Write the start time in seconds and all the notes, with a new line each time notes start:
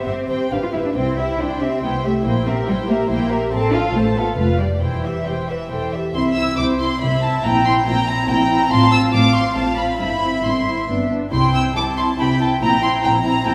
0.06 G1 C4 G4 C5 E5
0.30 G1 G4 C5 G5
0.51 G1 D4 G4 B4 F5
0.63 F4
0.73 G1 E4 G4 B4 E5
0.85 D4
0.96 C2 C4 E4 C5 G5
1.18 E4 G4 E5
1.39 C2 D4 E4 C5 G5
1.60 C4 G4 E5
1.83 C2 B3 E4 C5 G5
2.04 A3 G4 E5
2.25 A#1 A#3 E4 C5 G5
2.46 C4 G4 A#4 E5
2.68 A#1 G3 E4 C5 G5
2.89 A#3 G4 A#4 E5
3.10 A#1 A#3 E4 C5 G5
3.31 G4 A#4 E5
3.52 A1 C4 A4 C5 A5
3.73 F4 A4 F5
3.94 A1 A3 A4 C5 A5
4.16 B3 F4 A4 F5
4.37 F1 A3 F4 B4 F5
4.59 G3 G4 D5
4.81 E1 E3 E4 C5 G5
5.04 G4 E5
5.26 E1 G4 C5 G5
5.49 B4 E5
5.71 E1 A4 C5 G5
5.92 G4 E5
6.14 C2 C3 C4 E4 E5 C6
6.34 C4 E4 E6
6.57 C2 C3 C4 E4 C5 D6
6.79 C4 E4 C6
7.01 C2 C3 C4 E4 E5 B5
7.22 C4 E4 A5
7.44 A#1 A#2 C4 E4 G5 A#5
7.65 C4 E4 C6
7.86 A#1 A#2 C4 E4 G5 A#5
8.08 C4 E4 A#5
8.29 A#1 A#2 C4 E4 G5 A#5
8.50 C4 E4
8.71 A1 A2 C4 F4 A5 C6
8.92 C4 F4 E6
9.13 A1 A2 C4 F4 F5 D6
9.34 C4 F4 C6
9.56 A1 A2 C4 F4 F5 A5
9.77 C4 F4 B5
10.00 G1 G2 C4 E4 E5 B5
10.23 C4 E4
10.45 G1 G2 C4 E4 C6
10.67 C4 E4
10.89 G1 G2 B3 D4
11.11 B3 D4
11.32 C2 C3 C4 E4 G5 C6
11.55 C4 E4 E6
11.76 C2 C3 C4 E4 A5 D6
11.98 C4 E4 C6
12.19 C2 C3 C4 E4 G5 B5
12.40 C4 E4 A5
12.61 A#1 A#2 C4 E4 G5 A#5
12.82 C4 E4 C6
13.03 A#1 A#2 C4 E4 G5 A#5
13.25 C4 E4 A#5
13.45 A#1 A#2 C4 E4 G5 A#5